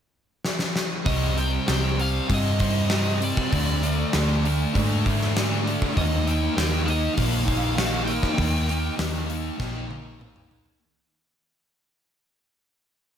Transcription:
0.45 snare
0.59 snare
0.76 snare
1.05 picked electric bass C2, distorted electric guitar C3 G3 C4, lead electric guitar D#5, kick, open hi-hat
1.36 distorted electric guitar G3 C4, lead electric guitar G5, open hi-hat
1.67 picked electric bass C2, distorted electric guitar C3 G3 C4, lead electric guitar G5, snare, open hi-hat
1.98 distorted electric guitar G3 C4, lead electric guitar F5, open hi-hat
2.28 picked electric bass G2, distorted electric guitar C3 G3 C4, kick, open hi-hat
2.33 lead electric guitar D#5
2.59 distorted electric guitar G3 C4, kick, open hi-hat
2.89 distorted electric guitar C3 G3 C4, snare, open hi-hat
3.20 distorted electric guitar G3 C4, lead electric guitar D5, open hi-hat
3.37 kick
3.51 picked electric bass D2, distorted electric guitar D3 A3 D4, kick, open hi-hat
3.83 distorted electric guitar A3 D4, open hi-hat
4.13 picked electric bass D2, distorted electric guitar D3 A3 D4, snare, open hi-hat
4.44 distorted electric guitar A3 D4, open hi-hat
4.74 picked electric bass G#2, distorted electric guitar D3 A3 D4, kick, open hi-hat
5.06 distorted electric guitar A3 D4, kick, open hi-hat
5.21 snare
5.36 distorted electric guitar D3 A3 D4, snare, open hi-hat
5.64 distorted electric guitar A3 D4, open hi-hat
5.82 kick
5.94 picked electric bass D#2, distorted electric guitar D#3 A#3 D#4, lead electric guitar D#5, kick, open hi-hat
6.26 distorted electric guitar A#3 D#4, lead electric guitar G5, open hi-hat
6.55 picked electric bass D#2, distorted electric guitar D#3 A#3 D#4, lead electric guitar G5, snare, open hi-hat
6.84 distorted electric guitar A#3 D#4, lead electric guitar D#5, open hi-hat
7.14 distorted electric guitar D#3 A#3 D#4, lead electric guitar F5, open hi-hat
7.18 picked electric bass A#1, kick
7.44 distorted electric guitar A#3 D#4, kick, open hi-hat
7.75 distorted electric guitar D#3 A#3 D#4, snare, open hi-hat
8.05 distorted electric guitar A#3 D#4, lead electric guitar G5, open hi-hat
8.22 kick, snare
8.37 picked electric bass D#2, distorted electric guitar D#3 A#3 D#4, kick, open hi-hat
8.68 distorted electric guitar A#3 D#4, open hi-hat
8.97 picked electric bass D#2, distorted electric guitar D#3 A#3 D#4, snare, open hi-hat
9.26 distorted electric guitar A#3 D#4, open hi-hat
9.57 picked electric bass A#1, distorted electric guitar D#3 A#3 D#4, kick, snare
9.88 distorted electric guitar A#3 D#4, high tom
10.19 distorted electric guitar D#3 A#3 D#4, mid tom
10.36 mid tom
10.48 distorted electric guitar A#3 D#4, floor tom
10.66 floor tom

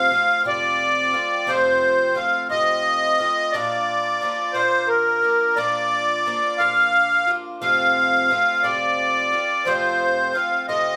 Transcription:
Already playing: twelve-string acoustic guitar F2 C3 F3 A3 C4 F4, accordion F5
0.11 twelve-string acoustic guitar F3 A3 C4 F4
0.44 twelve-string acoustic guitar F2 C3 F3 A3 C4 F4, accordion D5
1.13 twelve-string acoustic guitar F3 A3 C4 F4
1.47 twelve-string acoustic guitar F2 C3 F3 A3 C4 F4, accordion C5
2.15 twelve-string acoustic guitar F3 A3 C4 F4, accordion F5
2.49 twelve-string acoustic guitar F2 C3 F3 A3 C4 F4, accordion D#5
3.18 twelve-string acoustic guitar F3 A3 C4 F4
3.52 twelve-string acoustic guitar A#2 F3 A#3 D4, accordion D5
3.56 twelve-string acoustic guitar F4
4.21 twelve-string acoustic guitar F3 A#3 D4 F4
4.53 twelve-string acoustic guitar A#2 F3 A#3 D4 F4, accordion C5
4.88 accordion A#4
5.22 twelve-string acoustic guitar A#3 D4 F4
5.56 twelve-string acoustic guitar A#2 F3 A#3 D4 F4, accordion D5
6.26 twelve-string acoustic guitar F3 A#3 D4 F4
6.58 twelve-string acoustic guitar A#2 F3 A#3 D4 F4, accordion F5
7.27 twelve-string acoustic guitar A#3 D4 F4
7.61 twelve-string acoustic guitar F2 C3 F3 A3 C4 F4, accordion F5
8.30 twelve-string acoustic guitar F3 A3 C4 F4
8.63 twelve-string acoustic guitar F2 C3 F3 A3 C4 F4, accordion D5
9.32 twelve-string acoustic guitar F3 A3 C4 F4
9.65 twelve-string acoustic guitar F2 C3 F3 A3 C4 F4, accordion C5
10.33 twelve-string acoustic guitar F3 A3 C4 F4, accordion F5
10.68 twelve-string acoustic guitar F2 C3 F3 A3 C4 F4, accordion D#5

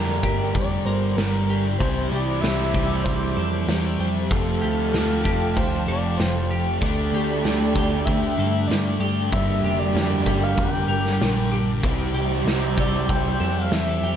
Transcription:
Already playing: picked electric bass F2, distorted electric guitar G2 D3 G3, overdriven electric guitar G2 D3 G3 A#3 D4 G4, clean electric guitar G4, analog synth pad G4 D5 A#5, soft synth lead A#4
0.22 picked electric bass G1, distorted electric guitar D3 G3, clean electric guitar G4, kick
0.53 picked electric bass F1, soft synth lead D5, kick, open hi-hat
0.85 picked electric bass G1, distorted electric guitar D3 G3, clean electric guitar A#4, soft synth lead C5
1.16 picked electric bass G1, distorted electric guitar G2 D3, soft synth lead A#4, snare, open hi-hat
1.21 distorted electric guitar G3
1.50 clean electric guitar G4
1.78 picked electric bass C2, distorted electric guitar C3 G3 C4, overdriven electric guitar C3 E3 G3, soft synth lead C5, analog synth pad C5 E5 D6, kick, open hi-hat
1.82 overdriven electric guitar C4 E4
2.09 picked electric bass C2, clean electric guitar G4, soft synth lead D5
2.41 picked electric bass C2, distorted electric guitar C3 G3 C4, soft synth lead E5, snare, open hi-hat
2.74 picked electric bass C2, distorted electric guitar G3 C4, clean electric guitar G4, kick
3.04 picked electric bass C2, soft synth lead C5, kick, open hi-hat
3.37 picked electric bass F2, distorted electric guitar G3 C4, clean electric guitar A4
3.67 picked electric bass E2, distorted electric guitar C3 G3 C4, snare, open hi-hat
3.99 picked electric bass F2, clean electric guitar G4
4.29 picked electric bass F1, distorted electric guitar F2 C3 F3, overdriven electric guitar F2 C3 F3, analog synth pad G4 F5 A5, soft synth lead A4, kick, open hi-hat
4.34 overdriven electric guitar A3 C4 F4
4.62 picked electric bass D2, clean electric guitar G4
4.93 picked electric bass D2, distorted electric guitar F2 C3 F3, snare, open hi-hat
5.24 picked electric bass F1, distorted electric guitar C3 F3, clean electric guitar G4, kick
5.56 picked electric bass D2, soft synth lead C5, kick, open hi-hat
5.87 picked electric bass F1, distorted electric guitar C3 F3, clean electric guitar A4, soft synth lead D5
6.17 picked electric bass F1, distorted electric guitar F2 C3 F3, soft synth lead C5, snare, open hi-hat
6.51 clean electric guitar G4
6.80 picked electric bass D2, distorted electric guitar D3 A3 D4, overdriven electric guitar D3 A3, analog synth pad A4 G5 D6, soft synth lead D5, kick, open hi-hat
6.84 overdriven electric guitar D4 G4
7.13 picked electric bass D2, clean electric guitar G4
7.43 picked electric bass D2, distorted electric guitar D3 A3 D4, snare, open hi-hat
7.75 picked electric bass D2, distorted electric guitar A3 D4, clean electric guitar G4, kick
8.05 picked electric bass D2, soft synth lead E5, kick, open hi-hat
8.37 picked electric bass G2, distorted electric guitar A3 D4, clean electric guitar A4
8.67 picked electric bass G2, distorted electric guitar D3 A3 D4, soft synth lead D5, open hi-hat
8.71 snare
8.99 picked electric bass G2, clean electric guitar G4
9.30 picked electric bass G1, overdriven electric guitar G2 D3 G3 A#3 D4 G4, distorted electric guitar G2 D3 G3, analog synth pad A#4 G5, soft synth lead E5, kick, open hi-hat
9.63 picked electric bass F1, clean electric guitar G4
9.79 soft synth lead D5
9.93 picked electric bass F2, distorted electric guitar G2 D3 G3, snare, open hi-hat
10.24 picked electric bass G1, distorted electric guitar D3 G3, clean electric guitar G4, kick
10.43 soft synth lead F5
10.57 picked electric bass F1, soft synth lead G5, kick, open hi-hat
10.88 picked electric bass G1, distorted electric guitar D3 G3, clean electric guitar A#4
11.06 snare
11.20 picked electric bass A#1, distorted electric guitar G2 D3 G3, snare, open hi-hat
11.52 clean electric guitar G4
11.82 picked electric bass C2, overdriven electric guitar C3 E3 G3 C4 G4, distorted electric guitar C3 G3 C4, analog synth pad C5 E5, kick, open hi-hat
12.13 picked electric bass C2, clean electric guitar G4
12.45 picked electric bass C2, distorted electric guitar C3 G3 C4, snare, open hi-hat
12.77 picked electric bass C2, distorted electric guitar G3 C4, clean electric guitar G4, soft synth lead D5, kick
13.09 picked electric bass C2, soft synth lead G5, kick, open hi-hat
13.40 picked electric bass F2, distorted electric guitar G3 C4, clean electric guitar A4
13.56 soft synth lead F5
13.71 picked electric bass E2, distorted electric guitar C3 G3 C4, soft synth lead E5, snare, open hi-hat
14.02 picked electric bass F2, clean electric guitar G4

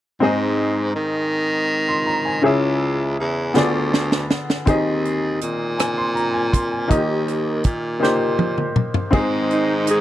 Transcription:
0.20 baritone saxophone G#2, upright piano G#2 C4 D#4 G#4 D#5
0.95 baritone saxophone D#3
1.88 upright piano C6
2.06 upright piano A#5
2.25 upright piano G#5
2.42 baritone saxophone C#2, upright piano C#3 C#4 E4 G#4 E5
3.19 baritone saxophone E2
3.54 baritone saxophone D2, upright piano D3 B3 F4 G#4 D5, snare
3.94 snare
4.12 snare
4.31 snare
4.50 snare
4.66 baritone saxophone D#2, upright piano D#3 C4 D#4 G#4 D#5, kick, closed hi-hat
5.05 closed hi-hat
5.41 baritone saxophone A#2, closed hi-hat
5.79 upright piano G#5, cross-stick, closed hi-hat
5.98 upright piano C6
6.15 upright piano A#5, closed hi-hat
6.33 upright piano G#5
6.52 upright piano C6, kick, closed hi-hat
6.72 upright piano G#5
6.88 baritone saxophone D#2, upright piano D#3 A#3 D#4 F4 D#5, kick, closed hi-hat
6.97 upright piano G4
7.28 cross-stick, closed hi-hat
7.64 baritone saxophone A#2, kick, closed hi-hat
8.00 upright piano A#3 D#4 G4 C5, snare
8.39 high tom
8.58 mid tom
8.76 mid tom
8.94 floor tom
9.11 upright piano G#2 C4 D#4 G#4 D#5, baritone saxophone G#2, string section D#3 G#3 C4 D#4, kick, crash
9.51 alto saxophone D#4, closed hi-hat
9.87 alto saxophone G#4, closed hi-hat

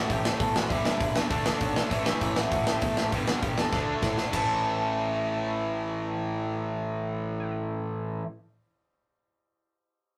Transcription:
Already playing: overdriven electric guitar A2 E3 A3, lead electric guitar F#5
0.10 picked electric bass A1, lead electric guitar G4 G5, kick, open hi-hat
0.24 picked electric bass A1, snare
0.40 picked electric bass E2, lead electric guitar A4 A5, kick, open hi-hat
0.54 picked electric bass A1, lead electric guitar F#4 F#5, snare
0.69 picked electric bass G1, overdriven electric guitar G2 D3 G3, lead electric guitar E4 E5, kick, open hi-hat
0.85 picked electric bass G1, snare
1.01 picked electric bass E1, kick, open hi-hat
1.15 picked electric bass E2, lead electric guitar D4 D5, snare
1.30 picked electric bass D2, overdriven electric guitar D3 A3 D4, kick, open hi-hat
1.46 snare
1.61 picked electric bass B1, kick, open hi-hat
1.76 snare
1.90 picked electric bass A1, overdriven electric guitar A2 E3 A3, lead electric guitar C#4 C#5, kick, open hi-hat
2.06 picked electric bass G2, lead electric guitar E4 E5, snare
2.21 picked electric bass A1, kick, open hi-hat
2.36 picked electric bass A1, lead electric guitar F#4 F#5, snare
2.52 picked electric bass A1, kick, open hi-hat
2.67 picked electric bass A1, lead electric guitar G4 G5, snare
2.82 picked electric bass E2, lead electric guitar A4 A5, kick, open hi-hat
2.97 picked electric bass A1, lead electric guitar G4 G5, snare
3.12 picked electric bass G1, overdriven electric guitar G2 D3 G3, kick, open hi-hat
3.27 picked electric bass G1, lead electric guitar F#4 F#5, snare
3.42 picked electric bass E1, lead electric guitar G4 G5, kick, open hi-hat
3.57 picked electric bass E2, lead electric guitar A4 A5, snare
3.72 picked electric bass D2, overdriven electric guitar D3 A3 D4, kick, snare
4.02 picked electric bass A2, kick, snare
4.17 snare
4.32 picked electric bass A1, overdriven electric guitar A2 E3 A3, lead electric guitar A5, kick, crash

